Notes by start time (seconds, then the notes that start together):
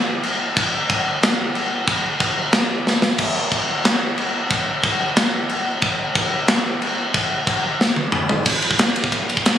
0.23 china
0.57 kick, china
0.90 kick, china
1.23 snare, china
1.55 china
1.88 kick, china
2.20 kick, china
2.52 snare, china
2.87 snare
3.02 snare
3.18 kick, china, crash
3.52 kick, china
3.85 snare, china
4.18 china
4.51 kick, china
4.84 kick, china
5.16 snare, china
5.49 china
5.82 kick, china
6.15 kick, china
6.48 snare, china
6.82 china
7.14 kick, china
7.47 kick, china
7.81 snare
7.96 high tom
8.12 mid tom
8.29 floor tom
8.46 kick, crash
8.62 ride
8.71 kick
8.79 snare, ride
8.96 ride
9.04 kick
9.12 kick, ride
9.30 ride
9.37 kick
9.46 snare, ride